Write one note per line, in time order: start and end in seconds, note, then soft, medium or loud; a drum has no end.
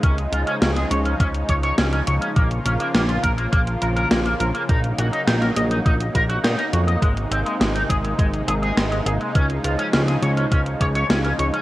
0.00 0.27 C#2 loud
0.00 6.98 C#3 medium
0.00 2.34 F3 medium
0.00 2.32 G#3 medium
0.00 0.14 C#4 medium
0.00 2.34 D#4 medium
0.00 kick loud
0.00 closed hi-hat medium
0.18 closed hi-hat soft
0.32 0.44 C#2 medium
0.32 0.40 F4 medium
0.32 closed hi-hat medium
0.47 0.54 C#4 loud
0.47 closed hi-hat soft
0.61 0.85 C#2 medium
0.61 0.69 C#4 medium
0.61 snare loud
0.61 closed hi-hat medium
0.76 0.84 G#4 medium
0.76 snare soft
0.76 closed hi-hat soft
0.91 1.14 C#2 loud
0.91 0.98 C#5 medium
0.91 closed hi-hat medium
1.05 1.13 C#4 medium
1.05 closed hi-hat soft
1.20 1.44 C#2 medium
1.20 1.27 C#4 loud
1.20 kick loud
1.20 closed hi-hat medium
1.34 closed hi-hat soft
1.49 1.73 C#2 medium
1.49 1.53 C#5 loud
1.49 kick medium
1.49 closed hi-hat medium
1.63 1.74 C#5 loud
1.63 closed hi-hat soft
1.78 2.02 C#2 medium
1.78 1.85 C#4 medium
1.78 snare loud
1.78 closed hi-hat medium
1.93 2.00 C#4 medium
1.93 closed hi-hat soft
2.07 2.19 C#2 medium
2.07 2.14 C#5 medium
2.07 closed hi-hat medium
2.21 2.29 C#4 medium
2.21 closed hi-hat soft
2.36 2.60 A#1 loud
2.36 4.67 F3 medium
2.36 2.47 A#3 medium
2.36 9.31 A#3 medium
2.36 4.67 F4 medium
2.36 kick loud
2.36 closed hi-hat medium
2.51 closed hi-hat soft
2.65 2.77 A#1 medium
2.65 2.73 C#4 medium
2.65 closed hi-hat medium
2.80 2.87 A#3 loud
2.80 closed hi-hat soft
2.94 3.18 A#1 loud
2.94 3.02 A#3 medium
2.94 snare loud
2.94 closed hi-hat medium
3.09 3.16 F4 medium
3.09 closed hi-hat soft
3.23 3.47 A#1 loud
3.23 3.31 A#4 medium
3.23 kick medium
3.23 closed hi-hat medium
3.38 3.45 A#3 medium
3.38 closed hi-hat soft
3.52 3.77 A#1 medium
3.52 3.60 A#3 loud
3.52 kick loud
3.52 closed hi-hat medium
3.67 closed hi-hat soft
3.82 4.06 A#1 medium
3.82 3.86 A#4 loud
3.82 closed hi-hat medium
3.96 4.07 A#4 loud
3.96 closed hi-hat soft
4.11 4.35 A#1 medium
4.11 4.18 A#3 medium
4.11 snare loud
4.11 closed hi-hat medium
4.25 4.33 A#3 medium
4.25 closed hi-hat soft
4.40 4.52 A#1 medium
4.40 4.47 A#4 medium
4.40 closed hi-hat medium
4.54 4.62 A#3 medium
4.54 closed hi-hat soft
4.69 4.93 A#1 loud
4.69 7.00 F#3 medium
4.69 4.80 D#4 medium
4.69 11.62 D#4 medium
4.69 kick loud
4.69 closed hi-hat medium
4.84 closed hi-hat soft
4.98 5.10 A#1 medium
4.98 5.06 F#4 medium
4.98 closed hi-hat medium
5.13 5.20 D#4 medium
5.13 closed hi-hat soft
5.27 5.51 A#1 medium
5.27 5.35 D#4 medium
5.27 snare loud
5.27 closed hi-hat medium
5.42 5.49 A#4 medium
5.42 snare soft
5.42 closed hi-hat soft
5.56 5.80 A#1 loud
5.56 5.64 D#5 medium
5.56 closed hi-hat medium
5.71 5.78 D#4 medium
5.71 closed hi-hat soft
5.85 6.09 A#1 medium
5.85 5.93 D#4 medium
5.85 kick loud
5.85 closed hi-hat medium
6.00 closed hi-hat soft
6.15 6.39 A#1 medium
6.15 6.22 A#4 medium
6.15 kick medium
6.15 closed hi-hat medium
6.29 6.37 F#4 loud
6.29 closed hi-hat soft
6.43 6.56 A#2 loud
6.43 6.55 D#4 loud
6.43 snare loud
6.43 closed hi-hat medium
6.58 6.63 D#4 loud
6.58 closed hi-hat soft
6.73 6.97 F2 medium
6.73 6.80 F#4 medium
6.73 closed hi-hat medium
6.87 6.98 D#5 medium
6.87 closed hi-hat soft
7.02 7.26 G#1 loud
7.02 9.33 C3 medium
7.02 7.13 G#3 medium
7.02 11.62 G#3 medium
7.02 kick loud
7.02 closed hi-hat medium
7.17 closed hi-hat soft
7.31 7.43 G#1 medium
7.31 7.38 C4 medium
7.31 closed hi-hat medium
7.46 7.53 G#3 medium
7.46 closed hi-hat soft
7.60 7.84 G#1 medium
7.60 7.68 G#3 medium
7.60 snare loud
7.60 closed hi-hat medium
7.75 7.82 D#4 medium
7.75 closed hi-hat soft
7.89 8.13 G#1 medium
7.89 7.97 G#4 medium
7.89 kick medium
7.89 closed hi-hat medium
8.04 8.11 G#3 medium
8.04 closed hi-hat soft
8.18 8.42 G#1 medium
8.18 8.26 G#3 loud
8.18 kick loud
8.18 closed hi-hat medium
8.33 closed hi-hat soft
8.48 8.72 G#1 medium
8.48 8.52 G#4 loud
8.48 closed hi-hat medium
8.62 8.73 G#4 loud
8.62 closed hi-hat soft
8.77 9.01 G#1 medium
8.77 8.84 G#3 medium
8.77 snare loud
8.77 closed hi-hat medium
8.91 8.99 G#3 medium
8.91 closed hi-hat soft
9.06 9.18 G#1 medium
9.06 9.13 G#4 medium
9.06 closed hi-hat medium
9.21 9.28 G#3 medium
9.21 closed hi-hat soft
9.35 9.59 C#2 medium
9.35 11.62 C#3 medium
9.35 11.62 F3 medium
9.35 9.46 C#4 medium
9.35 kick loud
9.35 closed hi-hat medium
9.50 closed hi-hat soft
9.64 9.76 C#2 medium
9.64 9.72 F4 medium
9.64 closed hi-hat medium
9.79 9.86 C#4 loud
9.79 closed hi-hat soft
9.93 10.17 C#2 medium
9.93 10.01 C#4 medium
9.93 snare loud
9.93 closed hi-hat medium
10.08 10.15 G#4 medium
10.08 snare soft
10.08 closed hi-hat soft
10.22 10.46 C#2 loud
10.22 10.30 C#5 medium
10.22 closed hi-hat medium
10.37 10.45 C#4 medium
10.37 closed hi-hat soft
10.52 10.76 C#2 medium
10.52 10.59 C#4 loud
10.52 kick loud
10.52 closed hi-hat medium
10.66 closed hi-hat soft
10.81 11.05 C#2 medium
10.81 10.85 C#5 medium
10.81 kick medium
10.81 closed hi-hat medium
10.95 11.06 C#5 loud
10.95 closed hi-hat soft
11.10 11.34 C#2 medium
11.10 11.17 C#4 medium
11.10 snare loud
11.10 closed hi-hat medium
11.25 11.32 C#4 medium
11.25 closed hi-hat soft
11.39 11.51 C#2 medium
11.39 11.47 C#5 medium
11.39 closed hi-hat medium
11.54 11.61 C#4 medium
11.54 closed hi-hat soft